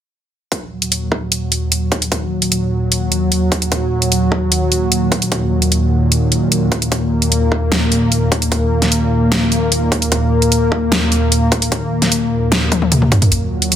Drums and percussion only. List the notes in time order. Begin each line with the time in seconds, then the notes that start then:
0.52 kick, closed hi-hat
0.82 closed hi-hat
0.92 closed hi-hat
1.12 kick
1.32 closed hi-hat
1.52 closed hi-hat
1.72 closed hi-hat
1.92 kick, closed hi-hat
2.02 closed hi-hat
2.12 kick, closed hi-hat
2.42 closed hi-hat
2.52 closed hi-hat
2.92 closed hi-hat
3.12 closed hi-hat
3.32 closed hi-hat
3.52 kick, closed hi-hat
3.62 closed hi-hat
3.72 kick, closed hi-hat
4.02 closed hi-hat
4.12 closed hi-hat
4.32 kick
4.52 closed hi-hat
4.72 closed hi-hat
4.92 closed hi-hat
5.12 kick, closed hi-hat
5.22 closed hi-hat
5.32 kick, closed hi-hat
5.62 closed hi-hat
5.72 closed hi-hat
6.12 closed hi-hat
6.32 closed hi-hat
6.52 closed hi-hat
6.72 kick, closed hi-hat
6.82 closed hi-hat
6.92 kick, closed hi-hat
7.22 closed hi-hat
7.32 closed hi-hat
7.52 kick
7.72 snare, closed hi-hat
7.92 closed hi-hat
8.12 closed hi-hat
8.32 kick, closed hi-hat
8.42 closed hi-hat
8.52 kick, closed hi-hat
8.82 snare, closed hi-hat
8.92 closed hi-hat
9.32 snare, closed hi-hat
9.52 closed hi-hat
9.72 closed hi-hat
9.92 kick, closed hi-hat
10.02 closed hi-hat
10.12 kick, closed hi-hat
10.42 closed hi-hat
10.52 closed hi-hat
10.72 kick
10.92 snare, closed hi-hat
11.12 closed hi-hat
11.32 closed hi-hat
11.52 kick, closed hi-hat
11.62 closed hi-hat
11.72 kick, closed hi-hat
12.02 snare, closed hi-hat
12.12 closed hi-hat
12.52 snare, closed hi-hat
12.72 kick, closed hi-hat, high tom
12.82 high tom
12.92 closed hi-hat, mid tom
13.02 mid tom
13.12 kick, closed hi-hat, mid tom
13.22 closed hi-hat, mid tom
13.32 closed hi-hat
13.62 closed hi-hat
13.72 closed hi-hat